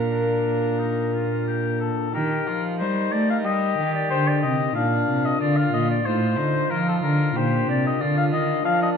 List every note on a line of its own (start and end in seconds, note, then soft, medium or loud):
0.00 1.90 A#2 medium
0.00 1.90 A#2 soft
0.00 2.08 D4 soft
0.00 2.09 F4 soft
0.00 1.77 A#4 medium
0.00 2.10 A#4 soft
0.10 0.81 D4 medium
0.80 1.12 D#4 medium
1.13 1.46 F4 medium
1.47 1.80 G4 medium
1.81 2.12 A4 medium
2.10 2.45 D#3 medium
2.10 4.69 D#4 soft
2.10 4.70 G4 soft
2.10 4.71 A#4 medium
2.14 2.44 D#3 medium
2.14 2.48 G4 medium
2.14 2.63 A#4 medium
2.47 2.82 F3 medium
2.47 2.77 F3 medium
2.47 2.79 F4 medium
2.80 3.12 G3 medium
2.80 3.10 G3 medium
2.80 3.46 D#4 medium
2.80 3.14 C5 medium
3.12 3.45 A3 medium
3.12 3.43 A3 medium
3.12 3.29 D5 medium
3.30 3.37 F5 medium
3.44 3.77 G3 medium
3.44 3.76 G3 medium
3.44 4.75 G4 medium
3.44 3.93 D#5 medium
3.78 4.10 D#3 medium
3.78 4.08 D#3 medium
3.94 4.10 D5 medium
4.10 4.45 D3 medium
4.10 4.41 D3 medium
4.10 4.29 C5 loud
4.28 4.42 D5 medium
4.42 4.75 C3 medium
4.42 4.73 C3 medium
4.42 4.74 D#5 medium
4.71 5.07 A#2 medium
4.71 6.00 D4 medium
4.71 6.01 F4 medium
4.71 6.02 A#4 medium
4.71 5.27 F5 loud
4.76 5.05 A#2 medium
4.76 5.39 D4 medium
5.08 5.40 C3 medium
5.08 5.38 C3 medium
5.25 5.40 D#5 medium
5.40 5.72 D3 medium
5.40 5.70 D3 medium
5.40 6.05 F4 medium
5.40 5.58 D5 medium
5.57 5.72 F5 medium
5.73 6.05 A#2 medium
5.73 6.03 A#2 medium
5.73 5.89 D#5 medium
5.90 6.07 D5 medium
6.01 7.30 D#4 medium
6.01 7.31 F4 medium
6.01 7.32 C5 medium
6.05 6.39 A2 medium
6.05 6.35 A2 medium
6.05 6.40 F4 medium
6.05 6.72 C5 medium
6.38 6.70 D3 medium
6.38 6.68 D3 medium
6.38 6.71 D#4 medium
6.70 7.03 F3 medium
6.70 7.00 F3 medium
6.70 7.37 F4 medium
6.70 6.87 A#4 loud
6.89 6.96 A4 medium
7.03 7.33 D3 medium
7.03 7.35 D3 medium
7.03 7.38 A#4 medium
7.31 7.67 A#2 medium
7.31 8.97 D4 medium
7.31 8.97 F4 medium
7.31 8.97 A#4 medium
7.36 7.65 A#2 medium
7.36 8.02 G4 medium
7.36 7.68 C5 medium
7.68 8.00 C3 medium
7.68 7.98 C3 medium
7.68 7.85 D5 medium
7.87 8.02 D#5 medium
8.00 8.34 D3 medium
8.00 8.30 D3 medium
8.00 8.64 F4 medium
8.00 8.17 D5 loud
8.18 8.25 F5 loud
8.32 8.64 D#3 medium
8.32 8.62 D#3 medium
8.32 8.64 D#5 loud
8.65 8.96 F3 medium
8.65 8.94 F3 medium
8.65 8.97 D4 medium
8.65 8.81 F5 loud
8.82 8.89 D#5 medium